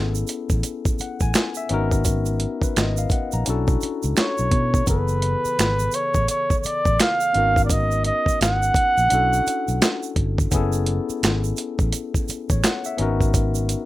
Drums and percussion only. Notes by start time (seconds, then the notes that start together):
0.15 shaker
0.27 closed hi-hat, shaker
0.50 kick, shaker
0.63 closed hi-hat, shaker
0.85 kick, shaker
0.99 closed hi-hat, shaker
1.20 kick, shaker
1.34 finger snap, snare, closed hi-hat, shaker
1.36 finger snap
1.55 shaker
1.69 closed hi-hat
1.91 kick, shaker
2.05 kick, closed hi-hat, shaker
2.26 shaker
2.40 closed hi-hat
2.62 kick, shaker
2.76 finger snap, snare, closed hi-hat, shaker
2.97 shaker
3.10 kick, closed hi-hat, shaker
3.32 shaker
3.46 closed hi-hat, shaker
3.68 kick, shaker
3.81 closed hi-hat, shaker
4.03 shaker
4.17 finger snap, snare, closed hi-hat, shaker
4.38 shaker
4.51 kick, closed hi-hat
4.74 kick, shaker
4.87 kick, closed hi-hat, shaker
5.08 shaker
5.22 closed hi-hat
5.45 shaker
5.59 finger snap, snare, closed hi-hat, shaker
5.79 shaker
5.92 closed hi-hat, shaker
6.14 kick, shaker
6.28 closed hi-hat, shaker
6.50 kick, shaker
6.64 closed hi-hat, shaker
6.85 kick, shaker
7.00 finger snap, snare, closed hi-hat, shaker
7.20 shaker
7.34 closed hi-hat
7.56 kick, shaker
7.70 kick, closed hi-hat, shaker
7.91 shaker
8.04 closed hi-hat
8.26 kick, shaker
8.41 finger snap, snare, closed hi-hat, shaker
8.62 shaker
8.74 kick, closed hi-hat, shaker
8.97 shaker
9.10 closed hi-hat, shaker
9.33 shaker
9.47 closed hi-hat, shaker
9.68 shaker
9.82 finger snap, snare, closed hi-hat, shaker
10.03 shaker
10.16 kick, closed hi-hat
10.38 kick, shaker
10.51 kick, closed hi-hat, shaker
10.72 shaker
10.86 closed hi-hat
11.10 shaker
11.23 finger snap, snare, closed hi-hat, shaker
11.44 shaker
11.57 closed hi-hat, shaker
11.79 kick, shaker
11.93 closed hi-hat, shaker
12.14 kick, shaker
12.28 closed hi-hat, shaker
12.50 kick, shaker
12.64 finger snap, snare, closed hi-hat, shaker
12.84 shaker
12.98 closed hi-hat
13.21 kick, shaker
13.34 kick, closed hi-hat, shaker
13.55 shaker
13.69 closed hi-hat, shaker